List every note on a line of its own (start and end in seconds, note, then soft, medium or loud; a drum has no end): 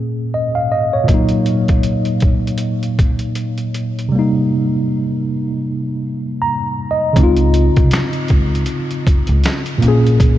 0.00 0.64 A#2 medium
0.00 0.65 A#3 medium
0.00 0.67 C#4 medium
0.00 0.69 G#4 medium
0.34 0.55 D#5 medium
0.55 0.70 F5 medium
0.72 0.92 D#5 medium
0.93 1.29 C#5 medium
1.04 4.06 A#2 medium
1.04 4.08 F#3 medium
1.08 4.09 A#3 medium
1.08 kick loud
1.08 closed hi-hat medium
1.14 4.11 D#4 medium
1.29 closed hi-hat medium
1.46 closed hi-hat medium
1.68 kick medium
1.68 closed hi-hat soft
1.83 closed hi-hat medium
2.05 closed hi-hat soft
2.20 kick medium
2.20 closed hi-hat medium
2.47 closed hi-hat soft
2.58 closed hi-hat medium
2.83 closed hi-hat soft
2.99 kick medium
2.99 closed hi-hat medium
3.19 closed hi-hat soft
3.35 closed hi-hat medium
3.58 closed hi-hat soft
3.74 closed hi-hat medium
3.99 closed hi-hat soft
4.09 7.10 C3 medium
4.09 7.12 G3 medium
4.15 7.14 A#3 medium
4.15 7.15 D#4 medium
6.42 6.88 A#5 medium
6.91 7.14 D#5 medium
7.13 7.67 C#2 loud
7.13 9.77 C#3 medium
7.13 9.78 C4 medium
7.13 kick loud
7.13 closed hi-hat medium
7.20 9.80 D#4 medium
7.20 9.82 F4 medium
7.37 closed hi-hat soft
7.54 closed hi-hat medium
7.76 7.90 C2 medium
7.76 kick medium
7.76 closed hi-hat soft
7.91 finger snap medium
7.91 snare loud
7.91 closed hi-hat medium
8.13 closed hi-hat soft
8.28 8.62 C#2 medium
8.28 kick medium
8.28 closed hi-hat medium
8.55 closed hi-hat soft
8.66 closed hi-hat medium
8.91 closed hi-hat soft
9.07 kick medium
9.07 closed hi-hat medium
9.27 9.42 C#2 medium
9.27 closed hi-hat soft
9.44 finger snap medium
9.44 snare loud
9.44 closed hi-hat medium
9.66 closed hi-hat soft
9.78 10.38 A#2 medium
9.78 10.38 A#3 medium
9.82 10.38 A#1 medium
9.82 10.38 C#4 medium
9.82 closed hi-hat medium
9.88 10.38 G#4 medium
10.07 closed hi-hat soft
10.20 kick medium
10.20 closed hi-hat medium